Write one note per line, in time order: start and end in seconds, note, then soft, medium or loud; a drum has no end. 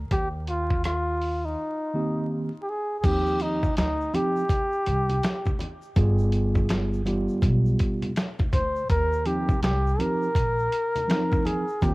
0.11 1.54 D#2 loud
0.11 0.29 G4 loud
0.11 kick loud
0.11 closed hi-hat medium
0.47 0.83 F4 medium
0.47 closed hi-hat medium
0.70 kick medium
0.84 1.47 F4 medium
0.84 cross-stick medium
0.84 closed hi-hat medium
1.22 open hi-hat soft
1.45 2.31 D#4 medium
1.94 2.49 D#3 medium
1.94 2.49 A#3 medium
1.94 2.50 C4 medium
1.94 2.50 G4 medium
2.63 2.71 G4 medium
2.70 2.99 G#4 medium
2.99 3.07 G#4 medium
3.04 3.64 D#2 loud
3.04 3.59 F3 medium
3.04 3.59 C4 medium
3.04 3.59 D#4 medium
3.04 3.60 G4 medium
3.04 3.43 G4 loud
3.04 kick loud
3.04 closed hi-hat medium
3.04 crash medium
3.04 shaker medium
3.26 shaker soft
3.40 3.78 D#4 medium
3.40 closed hi-hat medium
3.40 shaker soft
3.63 kick medium
3.63 high conga medium
3.63 shaker soft
3.77 4.07 D2 medium
3.77 4.16 D#4 medium
3.77 snare loud
3.77 closed hi-hat medium
3.77 shaker medium
4.01 shaker soft
4.13 4.42 F3 medium
4.13 4.42 C4 medium
4.13 4.42 D#4 medium
4.13 4.43 G4 medium
4.13 5.61 G4 loud
4.13 closed hi-hat medium
4.13 low conga medium
4.13 shaker soft
4.36 shaker soft
4.49 kick loud
4.49 closed hi-hat medium
4.49 high conga soft
4.49 shaker medium
4.73 shaker soft
4.86 5.17 C2 medium
4.86 closed hi-hat medium
4.86 shaker soft
5.09 closed hi-hat soft
5.09 high conga medium
5.09 shaker soft
5.23 snare loud
5.23 closed hi-hat loud
5.23 shaker medium
5.46 kick loud
5.46 high conga medium
5.46 shaker soft
5.59 closed hi-hat medium
5.59 low conga medium
5.59 shaker soft
5.82 shaker soft
5.96 7.25 G1 loud
5.96 7.01 G3 medium
5.96 7.01 B3 medium
5.96 7.01 F4 medium
5.96 7.02 G#4 medium
5.96 kick loud
5.96 closed hi-hat medium
5.96 shaker medium
6.19 shaker medium
6.32 closed hi-hat medium
6.32 shaker soft
6.55 kick medium
6.55 high conga medium
6.55 shaker soft
6.69 snare loud
6.69 closed hi-hat medium
6.69 shaker medium
6.94 shaker soft
7.06 8.10 G3 medium
7.06 8.11 B3 medium
7.06 8.11 F4 medium
7.06 8.11 G4 medium
7.06 closed hi-hat medium
7.06 low conga medium
7.06 shaker soft
7.29 shaker soft
7.42 7.72 B1 medium
7.42 kick loud
7.42 closed hi-hat medium
7.42 high conga medium
7.42 shaker medium
7.65 shaker soft
7.79 kick medium
7.79 closed hi-hat medium
7.79 shaker soft
8.02 closed hi-hat medium
8.02 high conga medium
8.02 shaker soft
8.16 snare loud
8.16 closed hi-hat medium
8.16 shaker medium
8.39 kick medium
8.39 high conga medium
8.39 shaker soft
8.53 8.83 D2 medium
8.53 8.87 C5 medium
8.53 kick medium
8.53 closed hi-hat medium
8.53 low conga medium
8.53 shaker soft
8.76 shaker soft
8.89 9.49 D#2 loud
8.89 9.28 A#4 loud
8.89 kick loud
8.89 closed hi-hat medium
8.89 shaker medium
9.12 shaker medium
9.25 9.54 F3 medium
9.25 9.54 C4 medium
9.25 9.55 D#4 medium
9.25 9.63 G4 medium
9.25 9.55 G4 medium
9.25 closed hi-hat medium
9.25 shaker soft
9.49 kick medium
9.49 high conga medium
9.49 shaker soft
9.63 9.92 C2 medium
9.63 10.02 G4 loud
9.63 snare loud
9.63 closed hi-hat medium
9.63 shaker medium
9.87 shaker soft
9.99 10.27 F3 medium
9.99 10.28 C4 medium
9.99 10.28 D#4 medium
9.99 10.28 G4 medium
9.99 11.47 A#4 loud
9.99 closed hi-hat medium
9.99 low conga medium
9.99 shaker soft
10.22 shaker medium
10.35 10.65 A#1 medium
10.35 kick loud
10.35 closed hi-hat medium
10.35 high conga soft
10.35 shaker medium
10.59 shaker soft
10.72 closed hi-hat medium
10.72 shaker soft
10.95 closed hi-hat medium
10.95 high conga medium
10.95 shaker soft
11.08 11.63 F3 medium
11.08 11.64 C4 medium
11.08 11.64 D#4 medium
11.08 11.64 A#4 medium
11.08 snare loud
11.08 closed hi-hat loud
11.08 shaker medium
11.31 kick loud
11.31 high conga medium
11.31 shaker soft
11.45 11.84 G#4 medium
11.45 closed hi-hat medium
11.45 low conga medium
11.45 shaker soft
11.68 shaker soft
11.81 11.94 D#2 loud
11.81 11.94 D#3 medium
11.81 11.94 A#3 medium
11.81 11.94 C4 medium
11.81 11.91 F4 medium
11.81 11.94 G4 medium
11.81 kick loud
11.81 closed hi-hat medium
11.81 shaker medium
11.89 11.94 G4 medium